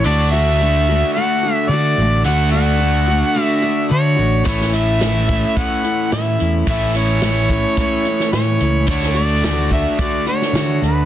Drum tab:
HH |----------------|----------------|x-x-x-x-x-x-x-x-|x-x-x-x-x-x-x-x-|
SD |----------------|----------------|-o--o-------o---|----o------oo---|
BD |----------------|----------------|o-----o-o-------|o-----o-o-------|

HH |x-x-x-x-x-x-x-x-|
SD |-o--o------oo---|
BD |o-----o-o-------|